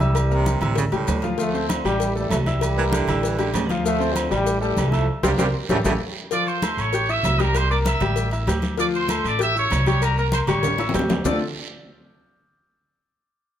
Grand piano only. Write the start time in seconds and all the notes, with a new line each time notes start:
0.00 E4 E5 E6
0.31 A#3 A#4 A#5
0.61 E4 E5 E6
0.92 G3 G4 G5
1.23 F3 F4 F5
1.38 F3 F4 F5
1.54 C4 C5 C6
1.85 G3 G4 G5
2.15 A3 A4 A5
2.47 E4 E5 E6
2.77 A#3 A#4 A#5
3.09 E4 E5 E6
3.39 G3 G4 G5
3.70 F3 F4 F5
3.85 F3 F4 F5
4.00 C4 C5 C6
4.31 G3 G4 G5
4.61 A3 A4 A5
4.92 E4 E5 E6
5.23 G4 A#4 C5
5.38 G4 A#4 C5
5.70 G4 A4 C#5
5.86 G4 A4 C#5
6.32 F3 F4 F5
6.63 A3 A4 A5
6.93 G4 G5 G6
7.09 E4 E5 E6
7.40 G3 G4 G5
7.71 A#3 A#4 A#5
8.01 G3 G4 G5
8.32 E4 E5 E6
8.48 G4 G5 G6
8.78 F3 F4 F5
9.09 A3 A4 A5
9.40 G4 G5 G6
9.56 E4 E5 E6
9.87 G3 G4 G5
10.18 A#3 A#4 A#5
10.48 G3 G4 G5
10.79 E4 E5 E6
10.94 G4 G5 G6
11.25 D3 A3 C4 D4 F4 A4